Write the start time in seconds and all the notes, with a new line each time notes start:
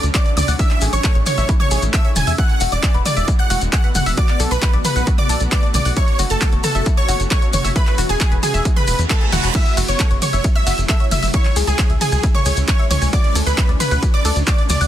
Already playing: F#3 A3 C#4 D4
0.03 D2, closed hi-hat, maracas
0.14 C#5 D5 D6, kick, clap, closed hi-hat, maracas
0.26 D5, closed hi-hat
0.37 D2 D5 D6, open hi-hat, mid tom, maracas
0.48 D2 F#5, open hi-hat, maracas
0.59 G#3 E4 E5 E6, kick, closed hi-hat, maracas
0.70 clap, closed hi-hat
0.81 A1 G#4, open hi-hat, maracas
0.93 A1 C#5 C#6, closed hi-hat, maracas
1.04 A4, kick, clap, closed hi-hat, maracas
1.15 A1 C#5, closed hi-hat
1.26 C#5 C#6, open hi-hat, mid tom, maracas
1.38 A1 E5, closed hi-hat, maracas
1.49 E4, kick, closed hi-hat, maracas
1.60 C#5 C#6, closed hi-hat, mid tom
1.71 A1 G#4, open hi-hat, maracas
1.82 A1, closed hi-hat, maracas
1.93 A4 E5 E6, kick, clap, closed hi-hat, maracas
2.05 C#5, closed hi-hat
2.16 E1 G#5 G#6, open hi-hat, mid tom, maracas
2.27 E2 E5, open hi-hat, maracas
2.38 E3 B3 E4 F#4 F#5 F#6, kick, closed hi-hat, maracas
2.50 closed hi-hat
2.60 E1 F#4, open hi-hat, maracas
2.72 E1 D5 D6, closed hi-hat, maracas
2.83 G#4, kick, clap, closed hi-hat, maracas
2.94 E1 B4, closed hi-hat
3.06 D5 D6, open hi-hat, mid tom, maracas
3.17 E1 E5, closed hi-hat, maracas
3.28 E4, kick, closed hi-hat, maracas
3.39 F#5 F#6, closed hi-hat
3.50 E1 F#4, open hi-hat, maracas
3.61 E1, closed hi-hat, maracas
3.73 G#4 F#5 F#6, kick, clap, closed hi-hat, maracas
3.84 B4, closed hi-hat
3.95 E1 F#5 F#6, open hi-hat, mid tom, maracas
4.06 E1 E5, open hi-hat, maracas
4.17 D3 A3 F#4 D5 D6, kick, closed hi-hat, maracas
4.29 clap, closed hi-hat
4.40 B1 A4, open hi-hat, maracas
4.51 B1 B4 B5, closed hi-hat, maracas
4.62 B4, kick, clap, closed hi-hat, maracas
4.73 B1 D5, closed hi-hat
4.85 B4 B5, open hi-hat, mid tom, maracas
4.96 B1 F#5, closed hi-hat, maracas
5.07 F#4, kick, closed hi-hat, maracas
5.18 D5 D6, closed hi-hat, mid tom
5.29 B1 A4, open hi-hat, maracas
5.40 B1, closed hi-hat, maracas
5.51 B4 D5 D6, kick, clap, closed hi-hat, maracas
5.63 D5, closed hi-hat
5.74 B1 D5 D6, open hi-hat, mid tom, maracas
5.85 B1 F#5, open hi-hat, maracas
5.97 E3 C#4 E4 C#5 C#6, kick, closed hi-hat, maracas
6.08 closed hi-hat
6.19 F#1 F#4, open hi-hat, maracas
6.30 F#1 A4 A5, closed hi-hat, maracas
6.41 A4, kick, clap, closed hi-hat, maracas
6.53 F#1 C#5, closed hi-hat
6.64 A4 A5, open hi-hat, mid tom, maracas
6.75 F#1 E5, closed hi-hat, maracas
6.86 E4, kick, closed hi-hat, maracas
6.97 C#5 C#6, closed hi-hat
7.08 F#1 F#4, open hi-hat, maracas
7.20 F#1, closed hi-hat, maracas
7.31 A4 C#5 C#6, kick, clap, closed hi-hat, maracas
7.42 C#5, closed hi-hat
7.53 F#1 C#5 C#6, open hi-hat, mid tom, maracas
7.64 F#1 E5, open hi-hat, maracas
7.76 G#3 B3 E4 B4 B5, kick, closed hi-hat, maracas
7.87 clap, closed hi-hat
7.98 E1 F#4, open hi-hat, maracas
8.09 E1 G#4 G#5, closed hi-hat, maracas
8.20 G#4, kick, clap, closed hi-hat, maracas
8.32 E1 B4, closed hi-hat
8.43 G#4 G#5, open hi-hat, mid tom, maracas
8.54 E1 E5, closed hi-hat, maracas
8.65 E4, kick, closed hi-hat, reverse cymbal, maracas
8.76 B4 B5, closed hi-hat, mid tom
8.87 E1 B4, open hi-hat, maracas
8.99 E2, closed hi-hat, maracas
9.10 A4 A5, kick, clap, closed hi-hat, maracas
9.21 G#4, closed hi-hat
9.32 E1 E4 F#4 F#5, open hi-hat, mid tom, maracas
9.44 E1 B4, open hi-hat, maracas
9.55 C#3 F#3 A3 E4 E5 E6, kick, closed hi-hat, crash, ride, maracas
9.66 closed hi-hat
9.77 F#1 F#4, open hi-hat, ride, maracas
9.88 F#1 C#5 C#6, closed hi-hat, maracas
9.99 A4, kick, clap, closed hi-hat, ride, maracas
10.11 F#1 C#5, closed hi-hat
10.22 C#5 C#6, open hi-hat, mid tom, ride, maracas
10.33 F#1 E5, closed hi-hat, maracas
10.44 E4, kick, closed hi-hat, ride, maracas
10.55 E5 E6, closed hi-hat
10.67 F#1 F#4, open hi-hat, ride, maracas
10.78 F#1, closed hi-hat, maracas
10.89 A4 E5 E6, kick, clap, closed hi-hat, ride, maracas
11.00 C#5, closed hi-hat
11.11 F#1 E5 E6, open hi-hat, mid tom, ride, maracas
11.23 F#1 E5, open hi-hat, maracas
11.33 E3 G#3 C#4 E4 C#5 C#6, kick, closed hi-hat, ride, maracas
11.45 clap, closed hi-hat
11.56 C#2 G#4, open hi-hat, ride, maracas
11.67 C#2 G#4 G#5, closed hi-hat, maracas
11.79 C#5, kick, clap, closed hi-hat, ride, maracas
11.90 C#2 E5, closed hi-hat
12.01 G#4 G#5, open hi-hat, mid tom, ride, maracas
12.12 C#2 G#5, closed hi-hat, maracas
12.23 E4, kick, closed hi-hat, ride, maracas
12.35 C#5 C#6, closed hi-hat, mid tom
12.46 C#2 G#4, open hi-hat, ride, maracas
12.57 C#2, closed hi-hat, maracas
12.68 C#5 C#6, kick, clap, closed hi-hat, ride, maracas
12.79 E5, closed hi-hat
12.90 C#2 C#5 C#6, open hi-hat, mid tom, ride, maracas
13.02 C#2 G#5, open hi-hat, maracas
13.13 F#3 A3 D4 F#4 D5 D6, kick, closed hi-hat, ride, maracas
13.24 closed hi-hat
13.35 D2 A4, open hi-hat, ride, maracas
13.46 D2 B4 B5, closed hi-hat, maracas
13.57 C#5, kick, clap, closed hi-hat, ride, maracas
13.69 D2 D5, closed hi-hat
13.80 B4 B5, open hi-hat, mid tom, ride, maracas
13.91 D2 F#5, closed hi-hat, maracas
14.03 F#4, kick, closed hi-hat, ride, maracas
14.14 D5 D6, closed hi-hat
14.25 D2 A4, open hi-hat, ride, maracas
14.36 D2, closed hi-hat, maracas
14.47 C#5 D5 D6, kick, clap, closed hi-hat, ride, maracas
14.59 D5, closed hi-hat
14.69 D2 D5 D6, open hi-hat, mid tom, ride, maracas
14.81 D2 F#5, open hi-hat, maracas